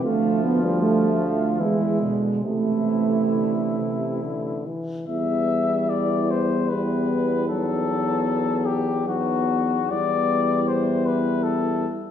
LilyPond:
<<
  \new Staff \with { instrumentName = "Cornet" } { \time 3/4 \key a \minor \tempo 4 = 75 f'4 f'4 e'8 r8 | e'2~ e'8 r8 | \key e \minor e''4 d''8 c''8 b'4 | a'4. g'8 fis'4 |
d''4 c''8 b'8 a'8 r8 | }
  \new Staff \with { instrumentName = "French horn section" } { \time 3/4 \key a \minor a8 b16 g16 a4 gis4 | a2 r4 | \key e \minor e'2 e'4 | dis'2 dis'4 |
e'2. | }
  \new Staff \with { instrumentName = "Trombone" } { \clef bass \time 3/4 \key a \minor f2 e8 b,8 | c2~ c8 r8 | \key e \minor g2 g4 | fis2 fis4 |
g2~ g8 r8 | }
  \new Staff \with { instrumentName = "Euphonium" } { \clef bass \time 3/4 \key a \minor f4 g8 f8 e8 d8 | c4 d8 c8 d8 e8 | \key e \minor b2 b4 | b2 b4 |
b2~ b8 r8 | }
  \new Staff \with { instrumentName = "Tuba" } { \clef bass \time 3/4 \key a \minor d,2 e,8 r8 | a,,2~ a,,8 r8 | \key e \minor e,2.~ | e,2. |
e,2~ e,8 r8 | }
>>